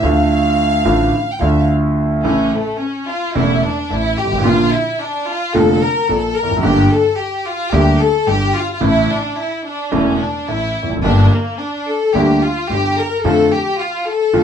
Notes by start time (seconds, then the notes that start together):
0.01 D2 D3 F3 A3 F4 F5
0.85 A1 A2 D3 F3 A3 F4
1.32 G5
1.40 D2 D3 F3 A3 F4 F5
1.51 E5
1.60 F5
2.24 A1 A2 C#3 E3 A3 C#4 E4
2.54 A3
2.81 C#4
3.09 F4
3.35 E1 E2 C#3 E3 A3 E4
3.64 D4
3.90 A1 A2 E4
4.18 G4
4.24 G1
4.31 G#1
4.38 A1
4.45 A#1 A#2 D3 F3 A#3 F4
4.74 E4
5.01 D4
5.29 F4
5.54 F1 F2 D3 F3 A#3 F4 A4
5.83 A#4
6.09 A#1 A#2 A4
6.37 A#4
6.43 E1 E2
6.50 F1 F2
6.57 F#1 F#2
6.63 G1 G2 D3 G3 A#3 G4
6.91 A4
7.18 G4
7.47 F4
7.72 D2 D3 G3 A#3 G4
8.01 A4
8.26 G1 G2 G4
8.56 F4
8.75 F4
8.80 A1 A2 C#3 E3 A3 E4
9.11 D4
9.39 E4
9.67 D4
9.91 E1 E2 C#3 E3 A3 C#4 E4
10.22 D4
10.48 A1 A2 E4
10.83 E1 E2
10.89 F1 F2
10.96 F#1 F#2
11.03 G1 G2 D3 G3 A#3 D4 G4
11.32 A#3
11.60 D4
11.89 A4
12.14 D2 D3 G3 A#3 G4
12.44 F4
12.69 G1 G2 G4
12.98 A#4
13.24 F2 D3 F3 A3 F4 A4
13.53 G4
13.80 F4
14.08 A4
14.33 F2 D3 F3 A3 F4